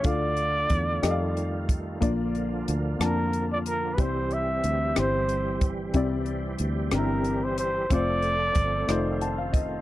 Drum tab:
HH |xxxxxx|xxxxxx|xxxxxx|xxxxxx|
SD |---r--|---r--|---r--|---r--|
BD |o-o--o|o-----|o----o|o-----|

HH |xxxxxx|
SD |---r--|
BD |o-o--o|